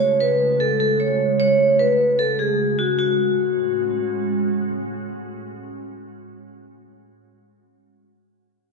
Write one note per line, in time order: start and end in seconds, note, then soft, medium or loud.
0.00 2.95 C#3 medium
0.00 2.94 G#3 medium
0.00 2.94 A3 medium
0.00 2.94 F#4 medium
0.00 0.18 C#5 loud
0.20 0.58 B4 medium
0.60 0.77 A4 medium
0.80 0.97 A4 medium
1.00 1.37 C#5 medium
1.40 1.77 C#5 loud
1.79 2.17 B4 medium
2.19 2.36 A4 medium
2.39 2.76 G#4 medium
2.79 2.95 F#4 medium
2.99 6.41 A2 medium
2.99 6.41 G#3 medium
2.99 6.41 C#4 medium
2.99 4.14 F#4 medium
2.99 6.41 F#4 medium